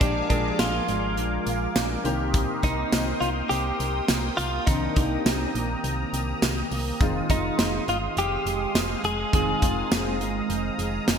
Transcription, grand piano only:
0.00 0.24 F3 medium
0.00 0.24 A#3 medium
0.00 0.25 D4 medium
0.00 0.25 G4 medium
0.29 1.23 F3 medium
0.29 1.23 A#3 medium
0.29 1.24 D4 medium
0.29 1.24 G#4 medium
2.04 2.51 D#3 medium
2.04 2.51 A#3 medium
2.04 2.52 C4 medium
2.04 2.52 G4 loud
2.63 3.57 D#3 medium
2.63 3.57 A#3 medium
2.63 3.57 C4 medium
2.63 3.57 D#4 medium
4.67 4.91 D#3 medium
4.67 4.91 A#3 medium
4.67 4.91 C4 medium
4.67 4.91 D4 medium
4.96 5.90 D#3 medium
4.96 5.90 A#3 medium
4.96 5.90 C4 medium
4.96 5.90 G4 medium
7.00 7.24 D#3 medium
7.00 7.24 G#3 medium
7.00 7.24 C4 medium
7.00 7.24 F4 loud
7.30 8.23 D#3 medium
7.30 8.23 G#3 medium
7.30 8.23 C4 medium
7.30 8.24 F4 medium
9.32 9.56 D#3 medium
9.32 9.56 G#3 medium
9.32 9.57 C4 medium
9.32 9.57 F4 medium
9.61 10.55 D#3 medium
9.61 10.56 G#3 medium
9.61 10.56 C4 medium
9.61 10.56 F4 medium

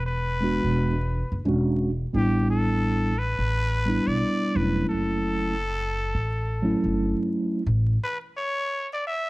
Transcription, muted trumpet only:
0.06 1.41 B4 loud
2.16 2.48 G4 medium
2.50 3.20 A4 medium
3.19 4.09 B4 loud
4.07 4.57 D5 loud
4.56 4.88 B4 medium
4.89 7.27 A4 loud
8.03 8.18 B4 medium
8.37 8.88 C#5 loud
8.93 9.05 D5 medium
9.07 9.30 E5 loud

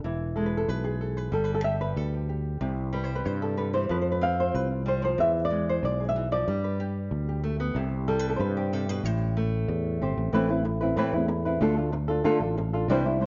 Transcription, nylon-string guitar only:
0.04 1.31 E3 medium
0.04 0.46 B4 soft
0.04 0.35 E5 soft
0.36 1.31 G#3 medium
0.36 0.47 A4 medium
0.46 0.67 B4 medium
0.57 0.68 A4 medium
0.69 1.16 B4 medium
0.84 1.33 G#4 medium
1.01 1.17 A4 medium
1.17 1.33 B4 medium
1.32 2.91 G3 medium
1.32 1.54 A4 medium
1.44 1.80 B4 medium
1.55 1.64 A4 medium
1.64 2.13 G4 medium
1.64 1.97 E5 loud
1.81 2.29 B4 medium
1.97 2.61 A4 medium
2.14 2.28 G4 soft
2.29 2.59 G4 soft
2.61 3.88 C3 medium
2.61 3.88 E4 soft
2.61 2.93 G4 soft
2.93 3.90 G3 medium
2.93 3.14 B4 medium
3.04 3.24 C5 medium
3.15 3.56 B4 medium
3.25 3.42 C5 medium
3.42 3.73 A4 medium
3.57 3.73 D3 medium
3.57 3.89 B4 medium
3.73 3.90 E3 medium
3.73 3.90 C5 medium
3.89 5.01 F3 medium
3.89 4.01 B4 loud
4.01 4.11 C5 medium
4.11 4.38 B4 medium
4.21 4.85 C4 medium
4.21 4.71 F5 medium
4.40 4.55 C5 medium
4.55 4.87 B4 medium
4.71 5.17 F4 soft
4.86 5.02 G3 medium
4.86 5.03 C5 medium
5.02 5.19 F3 medium
5.02 5.20 C5 medium
5.18 6.15 E3 medium
5.18 5.44 E5 loud
5.45 5.84 D5 medium
5.51 6.15 G#3 medium
5.70 5.84 C5 medium
5.85 6.08 D5 medium
6.00 6.46 G#4 soft
6.09 6.32 E5 medium
6.16 6.31 E3 medium
6.32 6.48 F3 medium
6.32 6.96 D5 medium
6.48 7.43 G3 medium
6.64 7.76 B4 medium
6.80 7.28 G4 medium
7.29 7.76 G4 soft
7.44 7.60 A3 medium
7.60 7.76 B3 medium
7.76 8.72 C3 medium
7.76 10.01 E4 soft
7.76 8.19 G4 soft
8.08 9.36 G3 medium
8.08 8.29 A4 medium
8.19 8.39 B4 medium
8.30 8.36 A4 medium
8.36 8.56 B4 medium
8.36 8.73 C5 medium
8.57 8.89 G4 medium
8.73 8.88 C3 medium
8.73 9.05 A4 medium
8.89 9.04 B2 medium
8.89 9.05 B4 loud
9.05 11.61 A2 medium
9.05 10.01 C5 loud
9.37 10.31 A3 medium
10.02 10.33 C4 soft
10.02 10.31 G4 medium
10.02 10.32 C5 soft
10.33 10.48 E3 medium
10.33 10.48 A3 medium
10.33 10.49 C4 medium
10.33 10.49 E4 medium
10.33 10.48 B4 medium
10.49 10.64 C4 soft
10.49 10.65 E4 soft
10.49 10.64 B4 medium
10.65 muted nylon-string guitar stroke medium
10.81 10.97 C4 soft
10.81 10.97 E4 medium
10.81 10.96 B4 medium
10.97 11.12 E3 medium
10.97 11.12 A3 medium
10.97 11.13 C4 medium
10.97 11.13 E4 medium
10.97 11.12 B4 loud
11.13 11.27 C4 soft
11.13 11.28 E4 medium
11.13 11.28 B4 medium
11.28 muted nylon-string guitar stroke medium
11.45 11.61 C4 soft
11.45 11.61 E4 medium
11.45 11.60 B4 medium
11.61 11.76 D3 medium
11.61 11.76 A3 medium
11.61 11.76 D4 medium
11.61 11.76 F4 medium
11.61 11.76 A4 medium
11.77 11.92 D4 soft
11.77 11.92 F4 soft
11.77 11.92 A4 medium
11.92 muted nylon-string guitar stroke medium
12.08 12.23 D4 soft
12.08 12.24 F4 medium
12.08 12.24 A4 medium
12.24 12.40 D3 medium
12.24 12.40 A3 medium
12.24 12.40 D4 medium
12.24 12.40 F4 loud
12.24 12.39 A4 medium
12.40 12.57 D4 soft
12.40 12.56 F4 soft
12.40 12.56 A4 medium
12.57 muted nylon-string guitar stroke medium
12.73 12.89 D4 soft
12.73 12.89 F4 soft
12.73 12.88 A4 medium
12.89 13.04 C3 medium
12.89 13.04 E3 medium
12.89 13.05 G3 medium
12.89 13.05 D4 medium
12.89 13.05 E4 medium
12.89 13.04 C5 medium
13.05 13.19 G3 soft
13.05 13.20 D4 soft
13.05 13.20 E4 medium
13.05 13.20 C5 medium
13.20 13.26 G3 medium
13.20 13.26 D4 medium
13.20 13.26 E4 medium
13.20 13.26 C5 medium

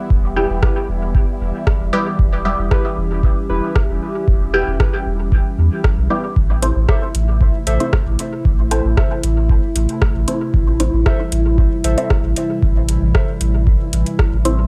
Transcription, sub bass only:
0.10 0.46 E1 loud
0.50 0.60 E1 loud
0.89 1.24 E1 loud
1.41 1.52 E1 loud
1.80 1.91 E1 medium
2.19 2.55 E1 loud
2.59 2.69 E1 loud
2.97 3.33 E1 loud
3.49 3.61 E1 loud
3.89 3.99 E1 medium
4.28 4.63 E1 loud
4.67 4.78 E1 loud
5.06 5.42 E1 loud
5.58 5.69 E2 medium
5.98 6.08 B1 loud
6.36 6.72 A1 loud
6.76 6.86 A1 loud
7.15 7.50 A1 medium
7.67 7.78 A1 loud
8.06 8.17 A1 medium
8.45 8.81 A1 loud
8.85 8.95 A1 loud
9.23 9.59 A1 loud
9.76 9.87 A1 loud
10.15 10.25 A1 medium
10.54 10.90 A1 loud
10.93 11.04 A1 loud
11.32 11.68 A1 medium
11.84 11.95 A1 loud
12.24 12.34 A1 medium
12.63 12.98 A1 loud
13.02 13.12 A1 loud
13.41 13.76 A1 medium
13.93 14.04 A1 loud
14.32 14.67 A1 medium

